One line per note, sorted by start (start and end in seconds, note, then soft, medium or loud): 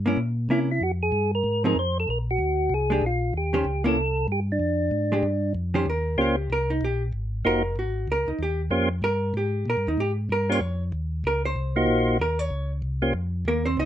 0.00 0.17 G2 medium
0.06 0.17 A#3 medium
0.06 0.17 C#4 medium
0.06 0.18 E4 medium
0.17 0.48 A#2 medium
0.49 0.80 C3 medium
0.49 0.68 A#3 medium
0.49 0.68 C#4 medium
0.49 0.60 E4 medium
0.49 0.68 E4 medium
0.71 0.83 E4 medium
0.81 1.12 F2 medium
0.81 0.92 F#4 medium
1.03 1.31 G#4 loud
1.12 1.43 G2 medium
1.35 1.63 A#4 loud
1.44 1.75 G#2 medium
1.64 1.75 F3 medium
1.64 1.75 C4 medium
1.64 1.75 D#4 medium
1.64 1.76 G#4 medium
1.64 1.78 A#4 loud
1.75 2.06 F2 medium
1.75 1.98 C5 loud
2.00 2.09 A4 medium
2.08 2.38 A#1 medium
2.08 2.18 A#4 medium
2.31 2.74 F#4 medium
2.39 2.70 D2 medium
2.70 3.01 C2 medium
2.74 3.05 G#4 medium
2.90 3.01 G#3 medium
2.90 3.02 D4 medium
2.90 3.02 G4 medium
3.02 3.33 A#1 medium
3.06 3.34 F4 medium
3.33 3.64 D#2 medium
3.37 3.84 G4 medium
3.53 3.64 D#3 medium
3.53 3.65 C#4 medium
3.53 3.65 G4 medium
3.53 3.65 C5 medium
3.65 3.96 C#2 medium
3.84 3.96 A#3 medium
3.84 3.96 C#4 medium
3.84 3.96 E4 medium
3.84 4.27 A4 medium
3.96 4.27 C2 medium
4.28 4.59 G2 medium
4.32 4.40 G4 medium
4.52 5.53 D4 medium
4.60 4.91 F2 medium
4.91 5.22 G#2 medium
5.12 5.23 G#3 medium
5.12 5.23 D4 medium
5.12 5.23 G4 medium
5.23 5.54 G2 medium
5.55 5.86 F2 medium
5.74 5.85 D#3 medium
5.74 5.85 C#4 medium
5.74 5.86 G4 medium
5.74 5.86 C5 medium
5.86 6.17 D#2 medium
5.86 6.18 A#4 medium
6.18 6.49 C#2 medium
6.18 6.36 A#3 medium
6.18 6.36 C#4 medium
6.18 6.36 F4 medium
6.18 6.36 G4 medium
6.18 6.49 G4 medium
6.18 6.36 C5 medium
6.50 6.81 C2 medium
6.50 6.70 A#4 medium
6.70 6.82 D#4 medium
6.81 7.12 A#1 medium
6.81 7.02 G4 medium
7.13 7.44 G#1 medium
7.45 7.76 F1 medium
7.45 7.62 A#3 medium
7.45 7.63 D#4 medium
7.45 7.63 F4 medium
7.45 7.63 F#4 medium
7.45 7.75 A#4 medium
7.45 7.63 C5 medium
7.76 8.07 G#1 medium
7.76 8.07 F#4 medium
8.08 8.26 C#2 medium
8.12 8.29 A#4 medium
8.27 8.33 C#2 soft
8.27 8.39 D#4 soft
8.39 8.70 D#2 medium
8.39 8.60 G4 medium
8.70 9.02 F2 medium
8.70 8.89 A#3 medium
8.70 8.89 C#4 medium
8.70 8.89 F4 medium
8.70 8.89 G4 medium
8.70 8.89 C5 medium
9.02 9.33 G2 medium
9.02 9.33 A#4 loud
9.34 9.65 G#2 medium
9.34 9.65 G4 medium
9.66 9.76 A#2 medium
9.66 9.87 A#4 medium
9.77 9.88 G2 medium
9.87 9.97 D#2 medium
9.87 9.99 D#4 medium
9.98 10.29 G#2 medium
9.98 10.11 G4 medium
10.29 10.60 G2 medium
10.29 10.52 A#4 medium
10.49 10.60 A#3 medium
10.49 10.60 C#4 medium
10.49 10.60 F4 medium
10.49 10.60 G4 medium
10.49 10.61 C5 medium
10.49 10.82 C#5 loud
10.61 10.92 F2 medium
10.92 11.23 D#2 medium
11.24 11.55 C#2 medium
11.24 11.45 A#4 medium
11.45 11.75 C5 loud
11.56 11.87 C2 medium
11.76 12.17 A#3 medium
11.76 12.18 D#4 medium
11.76 12.18 F4 medium
11.76 12.18 F#4 medium
11.76 12.18 C5 medium
11.87 12.18 A#1 medium
12.19 12.50 D#2 medium
12.19 12.39 A#4 medium
12.39 12.71 C#5 loud
12.50 12.82 C#2 medium
12.82 13.13 C2 medium
13.02 13.13 A#3 medium
13.02 13.13 C#4 medium
13.02 13.13 F4 medium
13.02 13.13 G4 medium
13.02 13.14 C5 medium
13.13 13.45 F2 medium
13.45 13.77 D#2 medium
13.45 13.66 A#3 medium
13.45 13.66 A#4 medium
13.66 13.78 C4 medium
13.66 13.78 C5 medium
13.77 13.85 C#2 medium
13.77 13.85 D#4 medium
13.77 13.85 D#5 medium